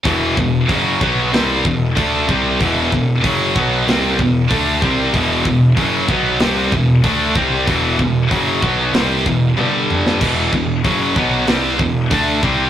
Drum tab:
CC |----------------|----------------|----------------|----------------|
HH |o---o---o---o---|o---o---o---o---|o---o---o---o---|o---o---o-------|
SD |--------o-------|--------o-------|--------o-------|--------o------o|
T1 |----------------|----------------|----------------|------------o---|
T2 |----------------|----------------|----------------|--------------o-|
BD |o-o-o-o---o-o-o-|o-o-o-o---o-o-o-|o-o-o-o---o-o-o-|o-o-o-o---o-----|

CC |x---------------|
HH |----o---o---o---|
SD |--------o-------|
T1 |----------------|
T2 |----------------|
BD |o-o-o-o---o-o-o-|